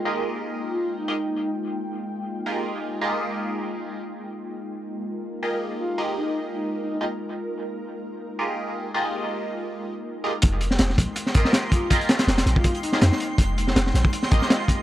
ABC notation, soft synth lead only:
X:1
M:4/4
L:1/16
Q:"Swing 16ths" 1/4=162
K:Fm
V:1 name="Soft synth lead"
z6 z F2 z E6 | z16 | z16 | z8 z2 B B z2 F2 |
z2 E2 z2 E2 z E E z4 z | z16 | z16 | z8 z2 B B z2 F2 |
z6 z F2 z E6 | z16 |]